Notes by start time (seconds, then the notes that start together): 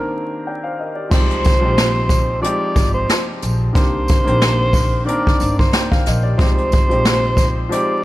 Already playing: D#3 A#3 C4 D4 G4 A#4
0.47 D5 G5
0.64 C5 F5
0.79 A#4 D#5
0.95 G4 D5
1.09 C2 F3 G#3 C4 D#4 C5, kick, crash
1.14 G4
1.30 closed hi-hat
1.44 kick, closed hi-hat, tambourine
1.61 A#1 F3 G#3 C4 D#4
1.65 G4
1.78 snare, closed hi-hat
2.09 kick, closed hi-hat, tambourine
2.42 F3 G#3 C4 D#4 D5, closed hi-hat
2.46 G4
2.76 G#1, kick, closed hi-hat, tambourine
2.94 C5
3.09 snare, closed hi-hat
3.42 A#1, closed hi-hat, tambourine
3.73 C2 D#3 A#3 C4 D4 C5, kick, closed hi-hat
3.77 G4
4.08 kick, closed hi-hat, tambourine
4.24 A#1 D#3 A#3 C4 D4, closed hi-hat
4.29 G4
4.42 snare, closed hi-hat
4.73 kick, open hi-hat, tambourine
5.05 D#3 A#3 C4 D4 D5, closed hi-hat
5.09 A#4
5.27 kick
5.40 G1, closed hi-hat, tambourine
5.58 C5, kick
5.73 D5 G5, snare, closed hi-hat
5.91 C5 F5, kick
6.06 A#1 A#4 D#5, snare, closed hi-hat, tambourine
6.23 G4 D5
6.37 C2 F3 G#3 C4 D#4 C5, kick, closed hi-hat
6.42 G4
6.58 closed hi-hat
6.72 kick, closed hi-hat, tambourine
6.89 A#1 F3 G#3 C4 D#4 G4, closed hi-hat
7.05 snare, closed hi-hat
7.37 kick, closed hi-hat, tambourine
7.69 F3 G#3 C4 D#4 D5, closed hi-hat
7.73 G4